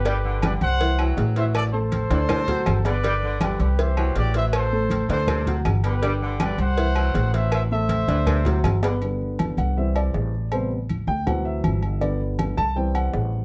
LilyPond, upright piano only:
<<
  \new Staff \with { instrumentName = "Upright piano" } { \time 4/4 \key g \major \tempo 4 = 160 <d d' d''>4 <g g' g''>4 <e e' e''>8 <e e' g''>4 <e e' e''>8~ | <e e' e''>8 <a a' a''>4 <d d' d''>4 <fis fis' fis''>4 <b b' b''>8 | <d d' d''>4 <g g' g''>4 <e e' e''>8 <e e' g''>4 <e e' e''>8~ | <e e' e''>8 <a a' a''>4 <d d' d''>4 <fis fis' fis''>4 <b b' b''>8 |
<d d' d''>4 <g g' g''>4 <e e' e''>8 <e e' e''>4 <e e' e''>8~ | <e e' e''>8 <a a' a''>4 <d d' d''>4 <fis fis' fis''>4 <b b' b''>8 | r4. fis''8 e''8 d''4. | c''8 r4 g''8 fis''8 e''4. |
d''8 r4 a''8 g''8 fis''4. | }
  \new Staff \with { instrumentName = "Upright piano" } { \clef bass \time 4/4 \key g \major r1 | r1 | r1 | r1 |
r1 | r1 | <d g b>2 <e g c'>4. r8 | <c g b>8 r4. <e fis c'>4. r8 |
<d g b>4. r8 <e g c'>2 | }
>>